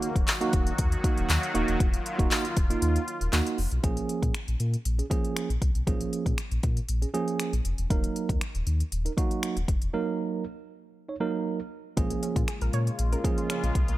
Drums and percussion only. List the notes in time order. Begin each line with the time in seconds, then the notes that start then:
0.02 closed hi-hat
0.16 kick, closed hi-hat
0.28 clap, closed hi-hat, tambourine
0.41 closed hi-hat
0.53 kick, closed hi-hat
0.67 closed hi-hat
0.78 kick, closed hi-hat
0.92 closed hi-hat
1.04 kick, closed hi-hat
1.18 closed hi-hat
1.30 clap, closed hi-hat, tambourine
1.43 closed hi-hat
1.55 closed hi-hat
1.68 closed hi-hat
1.80 kick, closed hi-hat
1.94 closed hi-hat
2.06 closed hi-hat
2.19 kick, closed hi-hat
2.31 clap, closed hi-hat, tambourine
2.45 closed hi-hat
2.57 kick, closed hi-hat
2.70 closed hi-hat
2.82 closed hi-hat
2.96 closed hi-hat
3.08 closed hi-hat
3.21 closed hi-hat
3.33 clap, closed hi-hat, tambourine
3.47 closed hi-hat
3.58 open hi-hat
3.71 closed hi-hat
3.84 kick, closed hi-hat
3.97 closed hi-hat
4.09 closed hi-hat
4.23 kick, closed hi-hat
4.34 finger snap, closed hi-hat
4.48 closed hi-hat
4.60 closed hi-hat
4.74 closed hi-hat
4.85 closed hi-hat
4.99 closed hi-hat
5.11 kick, closed hi-hat
5.25 closed hi-hat
5.37 finger snap, closed hi-hat
5.50 closed hi-hat
5.62 kick, closed hi-hat
5.75 closed hi-hat
5.87 kick, closed hi-hat
6.01 closed hi-hat
6.13 closed hi-hat
6.26 kick, closed hi-hat
6.38 finger snap, closed hi-hat
6.51 closed hi-hat
6.63 kick, closed hi-hat
6.77 closed hi-hat
6.89 closed hi-hat
7.02 closed hi-hat
7.14 closed hi-hat
7.28 closed hi-hat
7.40 finger snap, closed hi-hat
7.53 closed hi-hat
7.65 closed hi-hat
7.78 closed hi-hat
7.90 kick, closed hi-hat
8.04 closed hi-hat
8.16 closed hi-hat
8.29 kick, closed hi-hat
8.41 finger snap, closed hi-hat
8.55 closed hi-hat
8.67 closed hi-hat
8.80 closed hi-hat
8.92 closed hi-hat
9.06 closed hi-hat
9.18 kick, closed hi-hat
9.31 closed hi-hat
9.43 finger snap, closed hi-hat
9.57 closed hi-hat
9.68 kick, closed hi-hat
9.82 closed hi-hat
11.97 kick, closed hi-hat
12.10 closed hi-hat
12.23 closed hi-hat
12.36 kick, closed hi-hat
12.48 finger snap, closed hi-hat
12.61 closed hi-hat
12.73 closed hi-hat
12.87 closed hi-hat
12.99 closed hi-hat
13.13 closed hi-hat
13.24 kick, closed hi-hat
13.38 closed hi-hat
13.50 finger snap, closed hi-hat
13.64 closed hi-hat
13.75 kick, closed hi-hat
13.88 closed hi-hat